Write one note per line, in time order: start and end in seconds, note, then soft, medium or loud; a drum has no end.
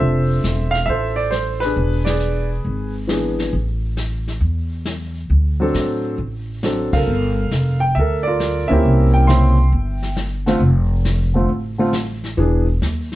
0.00 0.40 F1 medium
0.00 1.23 F3 soft
0.00 1.23 C4 soft
0.00 1.24 D4 soft
0.00 0.89 A4 medium
0.00 0.71 C5 medium
0.00 0.76 E5 loud
0.00 brush sweep soft
0.44 0.85 E1 medium
0.44 snare medium
0.44 hi-hat pedal soft
0.71 0.87 F5 medium
0.71 snare soft
0.86 1.72 A1 medium
0.86 1.29 C5 medium
0.86 1.15 E5 medium
0.86 brush sweep soft
0.90 1.73 A4 medium
1.16 1.31 D5 medium
1.31 1.62 C5 medium
1.31 snare medium
1.31 hi-hat pedal medium
1.60 2.07 B4 medium
1.60 snare soft
1.65 2.48 D4 medium
1.65 2.07 G#4 medium
1.76 2.61 E1 medium
1.76 brush sweep soft
2.05 2.92 G#4 medium
2.05 2.46 D5 medium
2.05 snare medium
2.05 ride medium
2.09 2.92 B4 medium
2.20 hi-hat pedal soft
2.65 3.49 G#1 medium
2.65 brush sweep soft
3.07 3.52 E3 soft
3.07 3.53 B3 soft
3.07 3.53 D4 soft
3.07 3.53 G#4 medium
3.07 snare medium
3.07 hi-hat pedal soft
3.39 snare soft
3.53 4.37 A1 medium
3.53 brush sweep soft
3.97 snare medium
3.97 hi-hat pedal medium
4.28 snare soft
4.41 5.25 E2 medium
4.41 brush sweep soft
4.85 snare medium
4.85 hi-hat pedal medium
5.30 5.71 D2 medium
5.30 brush sweep soft
5.60 6.16 F#3 medium
5.60 6.16 C4 medium
5.60 6.16 D4 medium
5.60 6.16 A4 medium
5.74 6.15 A2 medium
5.74 snare medium
5.74 hi-hat pedal medium
6.18 6.89 A1 medium
6.18 brush sweep soft
6.63 7.07 F#3 medium
6.63 7.07 C4 soft
6.63 7.08 D4 soft
6.63 6.94 A4 medium
6.63 snare medium
6.63 hi-hat pedal medium
6.93 7.06 F#1 medium
6.93 7.79 A4 medium
6.93 7.79 A#4 medium
6.93 7.78 F5 medium
6.93 kick medium
6.93 ride medium
7.07 7.48 G1 medium
7.07 brush sweep soft
7.51 7.92 F1 medium
7.51 snare medium
7.51 hi-hat pedal soft
7.80 7.95 G5 medium
7.95 8.66 D2 medium
7.95 8.23 E5 medium
7.95 brush sweep soft
7.99 8.82 A4 medium
7.99 8.26 A#4 medium
8.23 8.70 D5 medium
8.27 8.81 F4 medium
8.27 8.71 A#4 medium
8.40 snare medium
8.40 hi-hat pedal medium
8.68 8.83 D2 medium
8.68 9.25 A#3 medium
8.68 9.26 C4 medium
8.68 9.25 C#4 medium
8.68 9.26 E4 medium
8.68 9.10 E5 medium
8.72 9.56 G4 medium
8.72 9.56 A#4 medium
8.84 9.69 C2 medium
8.84 brush sweep soft
9.14 9.28 G5 medium
9.27 9.55 C#3 medium
9.27 9.55 A#3 soft
9.27 9.56 C4 soft
9.27 9.56 E4 medium
9.27 10.14 E5 medium
9.27 10.14 G5 medium
9.27 9.69 C6 medium
9.27 snare medium
9.27 hi-hat pedal medium
9.72 10.57 G1 medium
9.72 brush sweep soft
10.03 snare medium
10.16 snare medium
10.16 hi-hat pedal medium
10.46 10.59 D3 medium
10.46 10.60 A3 medium
10.46 10.60 C4 medium
10.46 10.60 F4 medium
10.46 snare soft
10.60 11.45 F1 medium
10.60 brush sweep soft
11.05 snare medium
11.05 hi-hat pedal medium
11.34 11.47 D3 medium
11.34 11.48 A3 soft
11.34 11.48 C4 soft
11.34 11.49 F4 medium
11.49 12.34 A1 medium
11.49 brush sweep soft
11.78 11.92 D3 medium
11.78 11.92 A3 medium
11.78 11.92 C4 medium
11.78 11.93 F4 medium
11.93 snare medium
11.93 hi-hat pedal medium
12.24 snare soft
12.37 12.79 E1 medium
12.37 12.65 E3 medium
12.37 12.65 B3 soft
12.37 12.65 D4 medium
12.37 12.66 G#4 medium
12.37 brush sweep soft
12.82 13.15 D#2 medium
12.82 snare medium
12.82 hi-hat pedal medium
13.12 snare soft